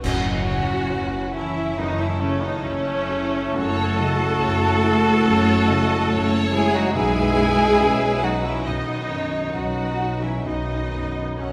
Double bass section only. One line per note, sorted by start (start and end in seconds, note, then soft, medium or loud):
0.04 0.82 F#1 medium
0.93 1.69 F#1 medium
1.78 2.54 F#1 medium
2.65 3.45 F#1 medium
3.55 4.31 F#1 loud
4.40 5.16 F#1 loud
5.25 6.01 F#1 loud
6.11 6.85 F#1 medium
6.95 7.70 B1 loud
7.80 8.56 B1 medium
8.67 9.44 B1 medium
9.54 10.35 B1 medium
10.45 11.27 B1 medium
11.38 11.53 B1 medium